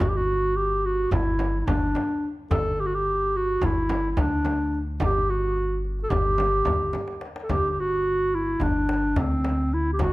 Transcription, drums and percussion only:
0.00 frame drum, darbuka dum
1.12 darbuka dum, frame drum
1.39 darbuka tek, frame drum
1.68 frame drum, darbuka dum
1.82 darbuka ka
1.95 darbuka tek, frame drum
2.24 darbuka ka
2.51 darbuka dum, frame drum
3.61 frame drum, darbuka dum
3.89 darbuka tek, frame drum
4.17 frame drum, darbuka dum
4.32 darbuka ka
4.45 darbuka tek, frame drum
4.74 darbuka ka
5.00 frame drum, darbuka dum
5.57 darbuka ka
5.85 darbuka ka
5.99 darbuka ka
6.10 frame drum, darbuka dum
6.38 darbuka tek, frame drum
6.65 frame drum, darbuka dum
6.93 darbuka tek, frame drum
7.08 darbuka ka
7.21 darbuka tek
7.36 darbuka ka
7.49 frame drum, darbuka dum
8.60 frame drum, darbuka dum
8.89 darbuka tek
9.16 darbuka dum, frame drum
9.31 darbuka ka
9.44 darbuka tek, frame drum
9.72 darbuka ka
9.99 darbuka dum, frame drum

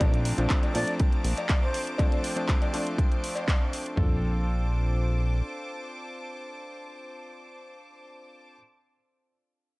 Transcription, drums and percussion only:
0.00 kick, closed hi-hat, cowbell
0.14 closed hi-hat
0.25 open hi-hat
0.38 closed hi-hat
0.50 kick, clap, closed hi-hat
0.63 closed hi-hat, cowbell
0.75 open hi-hat
0.87 closed hi-hat
1.00 kick, closed hi-hat
1.12 closed hi-hat
1.24 open hi-hat
1.37 closed hi-hat, cowbell
1.49 kick, clap, closed hi-hat
1.74 open hi-hat
1.87 closed hi-hat
1.98 kick, closed hi-hat, cowbell
2.12 closed hi-hat
2.24 open hi-hat
2.37 closed hi-hat
2.49 kick, clap, closed hi-hat
2.62 closed hi-hat, cowbell
2.74 open hi-hat
2.87 closed hi-hat
2.98 kick, closed hi-hat
3.12 closed hi-hat
3.24 open hi-hat
3.36 closed hi-hat, cowbell
3.48 kick, clap, closed hi-hat
3.73 open hi-hat
3.86 closed hi-hat
3.97 kick, floor tom

